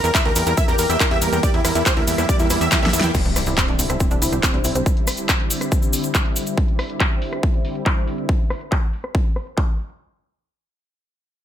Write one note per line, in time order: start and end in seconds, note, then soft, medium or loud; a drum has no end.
0.04 0.12 E2 loud
0.04 0.11 A#4 medium
0.04 0.09 A#4 medium
0.04 closed hi-hat medium
0.04 cabasa soft
0.14 0.22 E4 medium
0.14 0.22 E5 medium
0.14 0.22 E5 loud
0.14 kick loud
0.14 clap loud
0.14 closed hi-hat medium
0.14 ride medium
0.14 cabasa medium
0.25 0.33 D2 medium
0.25 0.30 G4 medium
0.25 0.32 A#4 medium
0.25 closed hi-hat soft
0.36 0.44 E2 loud
0.36 0.43 A#4 medium
0.36 open hi-hat loud
0.36 ride medium
0.36 cabasa medium
0.46 0.54 E2 loud
0.46 0.54 A#4 medium
0.46 0.52 A#4 medium
0.46 closed hi-hat medium
0.46 cabasa soft
0.57 0.60 E4 medium
0.57 0.65 E5 loud
0.57 kick loud
0.57 closed hi-hat medium
0.57 ride medium
0.57 cabasa medium
0.68 0.76 E2 medium
0.68 0.73 G4 loud
0.68 0.75 A#4 medium
0.68 closed hi-hat soft
0.68 cabasa soft
0.78 0.87 E2 loud
0.78 0.86 A#4 medium
0.78 0.86 A#4 loud
0.78 open hi-hat loud
0.78 ride medium
0.78 cabasa medium
0.89 0.97 E2 loud
0.89 0.97 E5 medium
0.89 0.97 G5 medium
0.89 closed hi-hat medium
0.89 cabasa soft
1.00 1.08 E4 medium
1.00 1.07 A#4 medium
1.00 kick loud
1.00 clap loud
1.00 closed hi-hat medium
1.00 ride medium
1.00 cabasa soft
1.11 1.19 E2 medium
1.11 1.16 G4 medium
1.11 1.18 E5 medium
1.11 1.18 E5 loud
1.11 closed hi-hat soft
1.22 1.29 E2 loud
1.22 1.29 A#4 medium
1.22 1.27 A#4 loud
1.22 1.29 A#4 medium
1.22 open hi-hat loud
1.22 ride medium
1.22 cabasa medium
1.32 1.40 E2 medium
1.32 1.40 A#4 medium
1.32 1.35 G5 medium
1.32 closed hi-hat medium
1.32 cabasa soft
1.43 1.46 G4 medium
1.43 1.50 D5 loud
1.43 kick loud
1.43 closed hi-hat medium
1.43 ride medium
1.43 cabasa medium
1.54 1.62 E2 medium
1.54 1.61 E4 medium
1.54 closed hi-hat soft
1.65 1.72 E2 loud
1.65 1.72 E4 medium
1.65 1.72 A#4 loud
1.65 cross-stick medium
1.65 open hi-hat loud
1.65 ride medium
1.65 cabasa medium
1.75 1.83 E2 loud
1.75 1.82 E4 medium
1.75 1.83 E4 medium
1.75 1.82 E4 medium
1.75 closed hi-hat medium
1.75 cabasa soft
1.86 1.93 G4 medium
1.86 1.93 C5 medium
1.86 kick loud
1.86 clap loud
1.86 closed hi-hat medium
1.86 ride medium
1.86 cabasa medium
1.97 2.04 D2 medium
1.97 2.04 E4 medium
1.97 2.02 A#4 medium
1.97 closed hi-hat soft
2.07 2.15 E2 loud
2.07 2.15 E4 medium
2.07 open hi-hat loud
2.07 ride medium
2.07 cabasa medium
2.18 2.26 E2 loud
2.18 2.25 E4 medium
2.18 2.26 E4 medium
2.18 2.25 E4 medium
2.18 cross-stick medium
2.18 closed hi-hat medium
2.18 cabasa soft
2.29 2.32 G4 medium
2.29 2.36 D5 loud
2.29 kick loud
2.29 closed hi-hat medium
2.29 ride medium
2.29 cabasa medium
2.39 2.47 E2 medium
2.39 2.47 E4 medium
2.39 2.45 A#4 medium
2.39 closed hi-hat soft
2.39 cabasa soft
2.50 2.58 E2 loud
2.50 2.55 E4 loud
2.50 2.57 E4 medium
2.50 cross-stick medium
2.50 open hi-hat loud
2.50 ride medium
2.50 cabasa medium
2.61 2.69 E2 loud
2.61 2.68 E5 medium
2.61 closed hi-hat medium
2.61 cabasa soft
2.71 2.79 E4 medium
2.71 2.79 G4 loud
2.71 kick loud
2.71 snare medium
2.71 clap loud
2.71 closed hi-hat medium
2.71 ride medium
2.71 cabasa soft
2.83 2.90 D2 medium
2.83 2.90 A#4 medium
2.83 2.90 E5 loud
2.83 2.90 E5 medium
2.83 snare medium
2.83 closed hi-hat soft
2.93 3.01 E2 loud
2.93 3.00 E4 medium
2.93 3.01 E5 medium
2.93 open hi-hat loud
2.93 ride medium
2.93 cabasa medium
3.00 3.12 E2 loud
3.00 3.11 E4 medium
3.00 3.07 G5 loud
3.00 snare loud
3.00 closed hi-hat medium
3.00 cabasa soft
3.14 3.18 C4 medium
3.14 kick loud
3.14 closed hi-hat medium
3.14 crash medium
3.14 impact medium
3.14 cabasa medium
3.25 3.33 C2 medium
3.25 closed hi-hat soft
3.36 3.44 C2 loud
3.36 3.41 D5 medium
3.36 cross-stick medium
3.36 open hi-hat loud
3.36 cabasa loud
3.46 3.54 C2 medium
3.46 3.52 E4 medium
3.46 closed hi-hat medium
3.46 cabasa soft
3.58 3.65 C4 medium
3.58 kick loud
3.58 clap loud
3.58 closed hi-hat medium
3.58 cabasa soft
3.68 3.76 A#1 medium
3.68 3.73 D4 medium
3.68 closed hi-hat soft
3.79 3.87 C2 loud
3.79 open hi-hat loud
3.79 cabasa medium
3.90 3.97 C2 medium
3.90 3.95 E4 medium
3.90 cross-stick medium
3.90 closed hi-hat medium
3.90 cabasa soft
4.00 4.03 C4 medium
4.00 kick loud
4.00 closed hi-hat medium
4.00 cabasa medium
4.11 4.19 C2 medium
4.11 4.16 D4 loud
4.11 closed hi-hat soft
4.11 cabasa soft
4.22 4.29 C2 loud
4.22 4.29 E4 loud
4.22 open hi-hat loud
4.22 cabasa medium
4.32 4.40 C2 medium
4.32 4.40 C5 medium
4.32 closed hi-hat medium
4.32 cabasa soft
4.43 4.50 C4 medium
4.43 kick loud
4.43 clap loud
4.43 closed hi-hat medium
4.43 cabasa soft
4.54 4.62 C2 medium
4.54 4.59 D4 medium
4.54 closed hi-hat soft
4.64 4.72 C2 loud
4.64 4.69 E4 loud
4.64 open hi-hat loud
4.64 cabasa medium
4.75 4.83 C2 medium
4.75 4.78 C5 medium
4.75 closed hi-hat medium
4.75 cabasa soft
4.86 kick loud
4.86 closed hi-hat soft
4.86 cabasa soft
4.97 closed hi-hat soft
5.07 cross-stick medium
5.07 open hi-hat loud
5.07 cabasa medium
5.17 closed hi-hat medium
5.17 cabasa soft
5.29 kick loud
5.29 clap loud
5.29 closed hi-hat medium
5.29 cabasa medium
5.40 closed hi-hat soft
5.50 open hi-hat loud
5.50 cabasa medium
5.61 cross-stick medium
5.61 closed hi-hat soft
5.61 cabasa soft
5.72 kick loud
5.72 closed hi-hat medium
5.72 cabasa medium
5.82 closed hi-hat soft
5.82 cabasa soft
5.93 open hi-hat loud
5.93 cabasa loud
6.04 closed hi-hat soft
6.04 cabasa soft
6.14 kick loud
6.14 clap loud
6.14 closed hi-hat soft
6.14 cabasa soft
6.25 closed hi-hat soft
6.36 open hi-hat loud
6.36 cabasa medium
6.47 closed hi-hat soft
6.47 cabasa soft
6.58 kick loud
6.58 closed hi-hat soft
6.68 closed hi-hat soft
6.79 cross-stick medium
6.79 open hi-hat loud
6.90 closed hi-hat soft
7.00 kick loud
7.00 clap loud
7.00 closed hi-hat soft
7.11 closed hi-hat soft
7.22 open hi-hat loud
7.33 cross-stick medium
7.33 closed hi-hat soft
7.43 kick loud
7.43 closed hi-hat soft
7.54 closed hi-hat soft
7.65 open hi-hat loud
7.75 closed hi-hat soft
7.86 kick loud
7.86 clap loud
7.97 closed hi-hat soft
8.07 open hi-hat loud
8.18 closed hi-hat soft
8.29 kick loud
8.40 closed hi-hat soft
8.50 cross-stick medium
8.50 open hi-hat loud
8.61 closed hi-hat soft
8.72 kick loud
8.72 clap loud
8.83 closed hi-hat soft
8.93 open hi-hat loud
9.04 cross-stick medium
9.04 closed hi-hat soft
9.15 kick loud
9.25 closed hi-hat soft
9.36 cross-stick medium
9.36 open hi-hat loud
9.47 closed hi-hat soft
9.58 kick loud
9.58 clap loud
9.79 open hi-hat loud
9.90 closed hi-hat soft